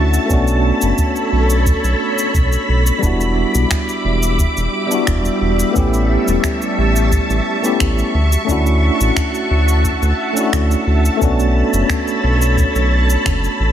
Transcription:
Already playing: D2 A3 C#4 D4 E4 F#4 E5 A5 C#6
0.14 shaker
0.26 A3 B3 C#4
0.30 B1 D4 F#4 A4 C#5 B5, kick, shaker
0.47 shaker
0.81 F#1, shaker
0.98 kick, shaker
1.16 shaker
1.32 B1
1.50 shaker
1.66 kick, shaker
1.84 B1, shaker
2.18 shaker
2.34 B1, kick, shaker
2.52 shaker
2.69 B1
2.86 shaker
2.99 E1 G3 B3 D4 E5 D6, kick
3.03 E4 F#4, shaker
3.21 shaker
3.54 B1, shaker
3.71 finger snap, kick, shaker
3.89 shaker
4.05 E1
4.23 shaker
4.39 kick, shaker
4.57 E1, shaker
4.87 G3 B3 D4
4.91 E4 F#4, shaker
5.07 E1, finger snap, kick, shaker
5.25 shaker
5.41 E1
5.59 shaker
5.71 A3 B3 C#4
5.75 A1 E4 G4 A5 C#6, kick, shaker
5.94 shaker
6.28 E1, shaker
6.44 finger snap, kick, shaker
6.62 shaker
6.78 A1
6.96 shaker
7.12 kick, shaker
7.30 A1, shaker
7.62 A3 B3 C#4 E4 G4, shaker
7.80 A1, finger snap, kick, shaker
7.98 shaker
8.14 D2 F#4 A5
8.32 shaker
8.45 D2 A3 C#4 D4, kick
8.49 E4 F#4, shaker
8.66 shaker
9.00 A1, shaker
9.16 finger snap, kick, shaker
9.34 shaker
9.51 D2
9.68 shaker
9.85 kick, shaker
10.02 D2, shaker
10.33 A3 C#4, shaker
10.37 D4 E4 F#4
10.53 D2, finger snap, kick, shaker
10.71 shaker
10.87 D2
11.05 shaker
11.17 A3 B3 C#4
11.21 B1 D4 F#4 A4 C#5 B5, kick, shaker
11.40 shaker
11.73 F#1, shaker
11.89 finger snap, kick, shaker
12.08 shaker
12.23 B1
12.42 shaker
12.57 kick, shaker
12.75 B1, shaker
13.10 shaker
13.26 F#1, finger snap, kick, shaker
13.44 shaker
13.60 A1

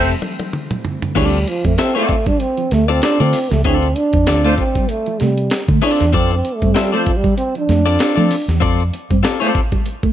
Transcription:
Already playing: F1 E3 G3 A3 C4 G4 A4 E5
0.22 high tom
0.40 high tom
0.53 mid tom
0.71 mid tom
0.85 floor tom
1.02 floor tom
1.15 D2 G3 C4 D4 F4 A4 D5, kick, closed hi-hat, crash
1.34 closed hi-hat
1.47 F3, muted clean electric guitar stroke, closed hi-hat
1.65 F2 A3 C4, kick, closed hi-hat
1.78 C4 F4 A4 E5, snare, closed hi-hat
1.95 A3 C4 F4 A4 C5 D5, closed hi-hat
2.09 kick, closed hi-hat
2.26 G3 D4, kick, closed hi-hat
2.40 C4, muted clean electric guitar stroke, closed hi-hat
2.57 F3, closed hi-hat
2.71 D2 A3, snare, closed hi-hat
2.88 C4 F4 A4 D5, closed hi-hat
3.02 C4 D4 F4 A4 D5, snare, closed hi-hat
3.20 D3 A3 C4 F4 A4 D5, closed hi-hat
3.33 muted clean electric guitar stroke, open hi-hat
3.51 C#2 F3 A3, snare, closed hi-hat
3.64 D2 C4 D4 F4 A4 D5, kick, closed hi-hat
3.82 closed hi-hat
3.96 D4, muted clean electric guitar stroke, closed hi-hat
4.13 F2 C4, kick, closed hi-hat
4.27 D2 C4 F4 A4 D5, snare, closed hi-hat
4.44 A3 C4 F4 A4 C5 D5, closed hi-hat
4.58 C4, kick, closed hi-hat
4.75 G3, kick, closed hi-hat
4.89 A3, muted clean electric guitar stroke, closed hi-hat
5.06 F3, closed hi-hat
5.20 C3 G3 A3, snare, closed hi-hat
5.38 closed hi-hat
5.50 snare, closed hi-hat
5.68 D3 A3, kick, closed hi-hat
5.82 C4 D4 F4 A4 D5, open hi-hat
6.00 E2 F3, snare, closed hi-hat
6.12 F2 F3 C4 F4 A4 D5, kick, closed hi-hat
6.31 C4, closed hi-hat
6.45 muted clean electric guitar stroke, closed hi-hat
6.55 A3
6.62 G2 C4, kick, closed hi-hat
6.74 G3 C4 F4 A4 E5, snare, closed hi-hat
6.92 A3 C4 F4 A4 C5 D5, closed hi-hat
6.96 F3
7.06 muted clean electric guitar stroke, kick, closed hi-hat
7.17 G3
7.24 G3, kick, closed hi-hat
7.37 C4, closed hi-hat
7.55 F3 D4, closed hi-hat
7.69 F2 A3, snare, closed hi-hat
7.86 C4 F4 A4 D5, closed hi-hat
7.99 C4 F4 A4 D5, snare, closed hi-hat
8.16 F3 A3 C4 F4 A4 D5, closed hi-hat
8.31 muted clean electric guitar stroke, open hi-hat
8.48 E2 F3, snare, closed hi-hat
8.60 F2 F3 C4 F4 A4 D5, kick, closed hi-hat
8.80 closed hi-hat
8.93 muted clean electric guitar stroke, closed hi-hat
9.10 G2 C4, kick, closed hi-hat
9.23 C4 F4 A4 D5, snare, closed hi-hat
9.40 A3 C4 F4 A4 C5 D5, closed hi-hat
9.55 muted clean electric guitar stroke, kick, closed hi-hat
9.72 G3, kick, closed hi-hat
9.86 muted clean electric guitar stroke, closed hi-hat
10.03 A3, kick, closed hi-hat

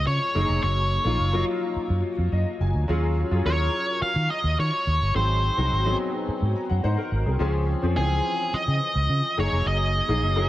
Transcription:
Already playing: F3 G#3 C4 C#4 G#4
0.07 C#3 C#5
0.35 F#1 F#3 A#3 D#4 G#4
0.49 F1
0.63 F#1 C#5
1.04 A#1 F#3 A#3 D#4 F4
1.19 F#1
1.32 F#3 A#3 D#4 F4
1.76 muted fingered electric bass stroke
1.90 F#2
2.18 F2
2.32 F#2 D#5
2.60 F#1 G#5
2.74 D2
2.88 D#2 F#3 C#4 F4 G#4
3.31 F#2 F#3 C#4 F4 G#4
3.45 D#2 F#3 C#4 F4 A#4 C#5
4.02 F5, muted fingered electric bass stroke
4.16 D#3
4.30 D#5
4.44 D#2
4.59 D#3 C#5
4.87 D#2
5.01 G1
5.14 G#1 F#3 C4 D#4 G#4 C5
5.57 C2 F#3 C4 D#4 F#4
5.72 G#1
5.85 F#3 B3 D#4 G#4
5.92 C4
6.28 muted fingered electric bass stroke
6.42 G#2
6.56 A#5
6.69 F#2 F#5
6.84 G#2 D#4 C5 F#5
6.98 A#4
7.12 G#1
7.26 C2 C4 G#4
7.39 C#2 F3 C4 C#4 G#4
7.82 F2 F3 C4 C#4 G#4
7.96 C#2 E3 C4 C#4 G#4
8.03 F3
8.53 D#5, muted fingered electric bass stroke
8.68 C#3
8.95 C#2
9.09 C#3
9.37 F#1 F#3 A#3 D#4 G#4 C#5
9.52 F1
9.66 F#1 D#5
10.08 A#1 F#3 A#3 D#4 G#4
10.22 F#1
10.36 F#3 A#3 D#4 G#4

